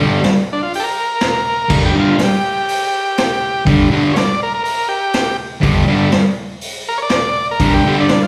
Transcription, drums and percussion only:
0.23 snare loud
0.23 open hi-hat medium
0.73 open hi-hat medium
1.20 snare loud
1.20 open hi-hat medium
1.70 kick loud
1.70 crash loud
2.19 snare loud
2.19 open hi-hat medium
2.68 open hi-hat medium
3.17 snare loud
3.17 open hi-hat medium
3.67 kick loud
3.67 open hi-hat medium
4.16 snare loud
4.16 open hi-hat medium
4.65 open hi-hat soft
5.13 snare loud
5.13 open hi-hat medium
5.63 kick loud
5.63 open hi-hat medium
6.12 snare loud
6.12 open hi-hat medium
6.61 open hi-hat medium
7.09 snare loud
7.09 open hi-hat medium
7.60 kick loud
7.60 open hi-hat medium
8.09 snare loud
8.09 open hi-hat medium

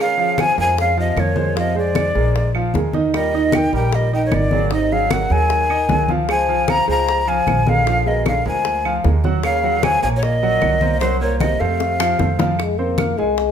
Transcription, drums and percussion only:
0.18 high conga soft
0.38 high bongo medium
0.38 high conga medium
0.38 claves medium
0.57 high bongo soft
0.57 high conga soft
0.77 high bongo medium
0.77 high conga soft
0.97 high conga soft
1.17 high bongo soft
1.17 low bongo medium
1.17 high conga medium
1.17 claves medium
1.36 high bongo soft
1.36 high conga medium
1.56 high bongo medium
1.56 high conga soft
1.75 high conga soft
1.95 high bongo medium
1.95 high conga medium
1.95 claves medium
2.15 high bongo soft
2.35 high bongo medium
2.35 high conga soft
2.55 high conga soft
2.55 claves medium
2.74 high bongo soft
2.74 low bongo medium
2.74 high conga medium
2.93 high bongo soft
2.93 high conga medium
3.13 high bongo medium
3.13 high conga soft
3.13 claves medium
3.33 high conga soft
3.52 high bongo medium
3.52 high conga medium
3.52 claves medium
3.72 high bongo soft
3.72 high conga soft
3.92 high bongo medium
3.92 high conga soft
4.12 high conga soft
4.32 high bongo soft
4.32 low bongo medium
4.32 high conga medium
4.32 claves medium
4.51 high bongo soft
4.51 high conga medium
4.71 high bongo medium
4.91 high conga soft
5.11 high bongo medium
5.11 high conga medium
5.11 claves medium
5.30 high bongo soft
5.50 high bongo medium
5.50 high conga soft
5.69 high conga soft
5.69 claves medium
5.89 high bongo soft
5.89 low bongo medium
5.89 high conga medium
6.08 high bongo soft
6.08 high conga medium
6.29 high bongo medium
6.29 high conga soft
6.29 claves medium
6.49 high conga soft
6.68 high bongo medium
6.68 high conga medium
6.68 claves medium
6.88 high bongo soft
6.88 high conga soft
7.08 high bongo medium
7.08 high conga soft
7.27 high conga soft
7.47 high bongo soft
7.47 low bongo medium
7.47 high conga medium
7.47 claves medium
7.67 high bongo soft
7.67 high conga medium
7.87 high bongo medium
7.87 high conga soft
8.06 high conga soft
8.26 high bongo medium
8.26 high conga medium
8.26 claves medium
8.46 high bongo soft
8.65 high bongo medium
8.65 high conga soft
8.85 high conga soft
8.85 claves medium
9.04 high bongo soft
9.04 low bongo medium
9.04 high conga medium
9.24 high bongo soft
9.24 high conga medium
9.43 high bongo medium
9.43 claves medium
9.64 high conga soft
9.83 high bongo medium
9.83 high conga loud
9.83 claves medium
10.03 high bongo soft
10.03 high conga soft
10.22 high bongo medium
10.22 high conga soft
10.42 high conga soft
10.62 high bongo soft
10.62 low bongo medium
10.62 high conga medium
10.62 claves medium
10.81 high bongo soft
10.81 high conga medium
11.01 high bongo medium
11.01 high conga soft
11.21 high conga soft
11.40 high bongo medium
11.40 high conga loud
11.40 claves medium
11.61 high bongo soft
11.80 high bongo medium
11.80 high conga soft
12.00 high bongo loud
12.00 high conga soft
12.00 claves medium
12.19 low bongo loud
12.19 high conga medium
12.39 low bongo loud
12.39 high conga medium
12.59 high bongo medium
12.59 high conga soft
12.59 claves medium
12.78 high conga soft
12.98 high bongo medium
12.98 high conga medium
12.98 claves medium
13.17 high bongo soft
13.17 high conga soft
13.37 high bongo medium
13.37 high conga soft

